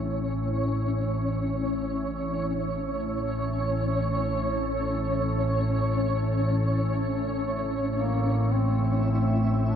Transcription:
Already playing: synth drone A1 A2, synth texture C#4 C#5
7.97 duduk A#3
8.52 analog synth pad A3, duduk C4, synth texture E4 E5
9.12 duduk C4
9.69 duduk D4

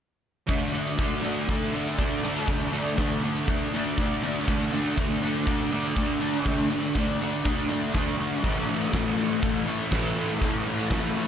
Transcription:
0.47 distorted electric guitar D3 A3 D4, kick, closed hi-hat
0.73 distorted electric guitar A3 D4, closed hi-hat
0.87 closed hi-hat
0.98 distorted electric guitar D3 A3 D4, kick, closed hi-hat
1.23 distorted electric guitar A3 D4, closed hi-hat
1.48 distorted electric guitar D3 A3 D4, kick, closed hi-hat
1.73 distorted electric guitar A3 D4, closed hi-hat
1.87 closed hi-hat
1.97 distorted electric guitar D3 A3 D4, kick, closed hi-hat
2.23 distorted electric guitar A3 D4, closed hi-hat
2.36 closed hi-hat
2.47 distorted electric guitar D3 A3 D4, kick, closed hi-hat
2.72 distorted electric guitar A3 D4, closed hi-hat
2.86 closed hi-hat
2.97 distorted electric guitar D3 A3 D4, kick, closed hi-hat
3.22 distorted electric guitar A3 D4, closed hi-hat
3.36 closed hi-hat
3.47 distorted electric guitar D3 A3 D4, kick, closed hi-hat
3.73 distorted electric guitar A3 D4, closed hi-hat
3.98 distorted electric guitar D3 A3 D4, kick, closed hi-hat
4.23 distorted electric guitar A3 D4, closed hi-hat
4.47 distorted electric guitar D3 A3 D4, kick, closed hi-hat
4.72 distorted electric guitar A3 D4, closed hi-hat
4.86 closed hi-hat
4.96 distorted electric guitar D3 A3 D4, kick, closed hi-hat
5.21 distorted electric guitar A3 D4, closed hi-hat
5.46 distorted electric guitar D3 A3 D4, kick, closed hi-hat
5.71 distorted electric guitar A3 D4, closed hi-hat
5.85 closed hi-hat
5.95 distorted electric guitar D3 A3 D4, kick, closed hi-hat
6.20 distorted electric guitar A3 D4, closed hi-hat
6.33 closed hi-hat
6.45 distorted electric guitar D3 A3 D4, kick, closed hi-hat
6.70 distorted electric guitar A3 D4, closed hi-hat
6.83 closed hi-hat
6.95 distorted electric guitar D3 A3 D4, kick, closed hi-hat
7.20 distorted electric guitar A3 D4, closed hi-hat
7.33 closed hi-hat
7.44 distorted electric guitar D3 A3 D4, kick, closed hi-hat
7.69 distorted electric guitar A3 D4, closed hi-hat
7.94 distorted electric guitar D3 A3 D4, kick, closed hi-hat
8.18 distorted electric guitar A3 D4, closed hi-hat
8.43 distorted electric guitar A2 E3 A3, kick, closed hi-hat
8.67 distorted electric guitar E3 A3, closed hi-hat
8.81 closed hi-hat
8.92 distorted electric guitar A2 E3 A3, kick, snare, closed hi-hat
9.16 distorted electric guitar E3 A3, closed hi-hat
9.40 distorted electric guitar A2 E3 A3, kick, closed hi-hat
9.65 distorted electric guitar E3 A3, closed hi-hat
9.80 closed hi-hat
9.91 distorted electric guitar A2 E3 A3, kick, snare, closed hi-hat
10.16 distorted electric guitar E3 A3, closed hi-hat
10.29 closed hi-hat
10.40 distorted electric guitar A2 E3 A3, kick, closed hi-hat
10.66 distorted electric guitar E3 A3, closed hi-hat
10.79 closed hi-hat
10.90 distorted electric guitar A2 E3 A3, kick, snare, closed hi-hat
11.15 distorted electric guitar E3 A3, closed hi-hat

